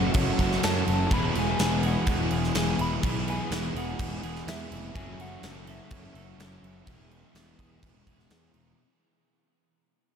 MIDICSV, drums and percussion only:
0, 0, Header, 1, 2, 480
1, 0, Start_track
1, 0, Key_signature, 4, "major"
1, 0, Tempo, 480000
1, 1113, Time_signature, 4, 2, 24, 8
1, 10156, End_track
2, 0, Start_track
2, 0, Title_t, "Drums"
2, 140, Note_on_c, 9, 49, 90
2, 147, Note_on_c, 9, 36, 117
2, 240, Note_off_c, 9, 49, 0
2, 247, Note_off_c, 9, 36, 0
2, 388, Note_on_c, 9, 49, 61
2, 390, Note_on_c, 9, 36, 82
2, 488, Note_off_c, 9, 49, 0
2, 490, Note_off_c, 9, 36, 0
2, 517, Note_on_c, 9, 38, 31
2, 617, Note_off_c, 9, 38, 0
2, 632, Note_on_c, 9, 49, 89
2, 639, Note_on_c, 9, 38, 110
2, 732, Note_off_c, 9, 49, 0
2, 739, Note_off_c, 9, 38, 0
2, 876, Note_on_c, 9, 49, 59
2, 976, Note_off_c, 9, 49, 0
2, 1109, Note_on_c, 9, 49, 85
2, 1112, Note_on_c, 9, 36, 120
2, 1209, Note_off_c, 9, 49, 0
2, 1212, Note_off_c, 9, 36, 0
2, 1354, Note_on_c, 9, 49, 65
2, 1454, Note_off_c, 9, 49, 0
2, 1592, Note_on_c, 9, 49, 77
2, 1599, Note_on_c, 9, 38, 114
2, 1692, Note_off_c, 9, 49, 0
2, 1699, Note_off_c, 9, 38, 0
2, 1830, Note_on_c, 9, 49, 64
2, 1930, Note_off_c, 9, 49, 0
2, 2067, Note_on_c, 9, 49, 87
2, 2072, Note_on_c, 9, 36, 108
2, 2167, Note_off_c, 9, 49, 0
2, 2172, Note_off_c, 9, 36, 0
2, 2306, Note_on_c, 9, 49, 65
2, 2406, Note_off_c, 9, 49, 0
2, 2437, Note_on_c, 9, 38, 34
2, 2537, Note_off_c, 9, 38, 0
2, 2548, Note_on_c, 9, 49, 86
2, 2555, Note_on_c, 9, 38, 114
2, 2648, Note_off_c, 9, 49, 0
2, 2655, Note_off_c, 9, 38, 0
2, 2790, Note_on_c, 9, 49, 66
2, 2891, Note_off_c, 9, 49, 0
2, 3031, Note_on_c, 9, 49, 93
2, 3034, Note_on_c, 9, 36, 115
2, 3131, Note_off_c, 9, 49, 0
2, 3134, Note_off_c, 9, 36, 0
2, 3278, Note_on_c, 9, 49, 71
2, 3378, Note_off_c, 9, 49, 0
2, 3515, Note_on_c, 9, 49, 87
2, 3522, Note_on_c, 9, 38, 107
2, 3615, Note_off_c, 9, 49, 0
2, 3622, Note_off_c, 9, 38, 0
2, 3764, Note_on_c, 9, 49, 67
2, 3864, Note_off_c, 9, 49, 0
2, 3992, Note_on_c, 9, 49, 94
2, 3995, Note_on_c, 9, 36, 113
2, 4092, Note_off_c, 9, 49, 0
2, 4095, Note_off_c, 9, 36, 0
2, 4233, Note_on_c, 9, 49, 67
2, 4333, Note_off_c, 9, 49, 0
2, 4357, Note_on_c, 9, 38, 36
2, 4457, Note_off_c, 9, 38, 0
2, 4479, Note_on_c, 9, 49, 89
2, 4486, Note_on_c, 9, 38, 120
2, 4579, Note_off_c, 9, 49, 0
2, 4586, Note_off_c, 9, 38, 0
2, 4717, Note_on_c, 9, 49, 65
2, 4817, Note_off_c, 9, 49, 0
2, 4954, Note_on_c, 9, 49, 84
2, 4955, Note_on_c, 9, 36, 119
2, 5054, Note_off_c, 9, 49, 0
2, 5055, Note_off_c, 9, 36, 0
2, 5196, Note_on_c, 9, 49, 63
2, 5296, Note_off_c, 9, 49, 0
2, 5431, Note_on_c, 9, 49, 82
2, 5438, Note_on_c, 9, 38, 109
2, 5531, Note_off_c, 9, 49, 0
2, 5538, Note_off_c, 9, 38, 0
2, 5671, Note_on_c, 9, 49, 65
2, 5771, Note_off_c, 9, 49, 0
2, 5906, Note_on_c, 9, 49, 87
2, 5912, Note_on_c, 9, 36, 115
2, 6006, Note_off_c, 9, 49, 0
2, 6012, Note_off_c, 9, 36, 0
2, 6153, Note_on_c, 9, 49, 67
2, 6253, Note_off_c, 9, 49, 0
2, 6398, Note_on_c, 9, 49, 84
2, 6405, Note_on_c, 9, 38, 113
2, 6498, Note_off_c, 9, 49, 0
2, 6505, Note_off_c, 9, 38, 0
2, 6640, Note_on_c, 9, 49, 61
2, 6740, Note_off_c, 9, 49, 0
2, 6869, Note_on_c, 9, 49, 87
2, 6872, Note_on_c, 9, 36, 114
2, 6969, Note_off_c, 9, 49, 0
2, 6972, Note_off_c, 9, 36, 0
2, 7113, Note_on_c, 9, 49, 67
2, 7213, Note_off_c, 9, 49, 0
2, 7352, Note_on_c, 9, 49, 88
2, 7359, Note_on_c, 9, 38, 104
2, 7452, Note_off_c, 9, 49, 0
2, 7459, Note_off_c, 9, 38, 0
2, 7588, Note_on_c, 9, 49, 69
2, 7590, Note_on_c, 9, 36, 83
2, 7688, Note_off_c, 9, 49, 0
2, 7690, Note_off_c, 9, 36, 0
2, 7827, Note_on_c, 9, 49, 94
2, 7830, Note_on_c, 9, 36, 111
2, 7927, Note_off_c, 9, 49, 0
2, 7930, Note_off_c, 9, 36, 0
2, 8070, Note_on_c, 9, 36, 83
2, 8071, Note_on_c, 9, 49, 72
2, 8170, Note_off_c, 9, 36, 0
2, 8171, Note_off_c, 9, 49, 0
2, 8194, Note_on_c, 9, 38, 35
2, 8294, Note_off_c, 9, 38, 0
2, 8303, Note_on_c, 9, 49, 89
2, 8310, Note_on_c, 9, 38, 112
2, 8403, Note_off_c, 9, 49, 0
2, 8410, Note_off_c, 9, 38, 0
2, 8538, Note_on_c, 9, 49, 67
2, 8638, Note_off_c, 9, 49, 0
2, 10156, End_track
0, 0, End_of_file